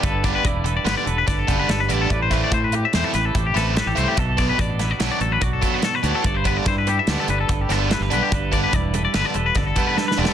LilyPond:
<<
  \new Staff \with { instrumentName = "Clean electric guitar" } { \time 5/4 \key g \major \tempo 4 = 145 a'8 d''16 b'16 d''8 b'16 d''16 b'16 d''16 a'16 b'16 d''16 a'8 b'16 a'16 b'16 d''16 a'16 | d''16 c''16 b'16 d''16 c''16 b'16 g'16 e''16 c''16 a'16 b'16 a'8 g'16 a'8 b'16 g'16 c''16 g'16 | a'8 d''16 b'16 d''8 b'16 d''16 b'16 d''16 a'16 b'16 d''16 a'8 b'16 a'16 b'16 d''16 a'16 | d''16 c''16 b'16 d''16 c''16 b'16 g'16 e''16 d''16 a'16 b'16 a'8 g'16 a'8 b'16 g'16 b'16 g'16 |
a'8 d''16 b'16 d''8 b'16 d''16 b'16 d''16 a'16 b'16 d''16 a'8 b'16 a'16 b'16 d''16 a'16 | }
  \new Staff \with { instrumentName = "Clean electric guitar" } { \time 5/4 \key g \major << { b'4 e'8 a'4 b'8 a'8 b'8 b'4 | b'4 c'8 g'4 b'8 g'8 b'8 a'4 | a'4 d'8 e'16 fis'8. a'8 fis'8 a'4. | a'16 b'8. e'8 a'4 a'16 b'16 a'8 a'16 b'16 a'16 b'8. |
b'4 e'8 a'4 b'8 a'8 b'8 b'4 | } \\ { <g, g>8 g4. d2 g,8 g8 | a,8 a4. e2 a,8 a8 | b,8 b4. fis2 b,8 a,8 | g,8 g4. d2 g,8 g8 |
g,8 g4. d2 g,8 g8 | } >> }
  \new Staff \with { instrumentName = "Overdriven electric guitar" } { \time 5/4 \key g \major r8 <d g b d'>8 r4 <d g b d'>8 r4 <d g b d'>8 r8 <d g b d'>8 | r8 <e a c' e'>8 r4 <e a c' e'>8 r4 <e a c' e'>8 r8 <e a c' e'>8 | r8 <b, fis b d'>8 r4 <b, fis b d'>8 r4 <b, fis b d'>8 r8 <b, fis b d'>8 | r8 <d g b d'>8 r4 <d g b d'>8 r4 <d g b d'>8 r8 <d g b d'>8 |
r8 <d g b d'>8 r4 <d g b d'>8 r4 <d g b d'>8 r8 <d g b d'>8 | }
  \new Staff \with { instrumentName = "Fingered electric bass" } { \clef bass \time 5/4 \key g \major g,,4 e,,4 g,,16 r16 e,,8 g,,8 fis,,8 g,,8 a,,8 | a,,4 a,4 e,16 r16 a,,8 a,,8 a,,8. a,,16 c,16 r16 | b,,4 a,,4 b,,16 r16 a,,8 b,,8 r4 d,16 r16 | g,,4 g,4 d,16 r16 g,,8 g,,8 g,,8. g,,16 b,,16 r16 |
g,,4 e,,4 g,,16 r16 e,,8 g,,8 r4 e,,16 r16 | }
  \new DrumStaff \with { instrumentName = "Drums" } \drummode { \time 5/4 <hh bd>8 <hh bd>8 <hh bd>8 hh8 <hh sn>8 hh8 <hh bd sn>8 <hh bd>8 <hh sn>8 hh8 | <hh bd>8 <hh bd sn>8 <hh bd>8 hh8 <hh sn>8 <hh sn>8 <hh bd>8 <hh sn>8 <hh sn>8 hh8 | <hh bd>8 <hh bd sn>8 <hh bd>8 <hh sn>8 <hh sn>8 hh8 <hh bd>8 <hh bd>8 <hh sn>8 hh8 | <hh bd>8 <hh bd>8 <hh bd sn>8 hh8 <hh sn>8 hh8 <hh bd>8 <hh sn>8 <hh sn>8 hh8 |
<hh bd>8 <hh bd>8 <hh bd>8 hh8 <hh sn>8 hh8 <hh bd sn>8 <hh bd>8 \tuplet 3/2 { sn8 sn8 sn8 } | }
>>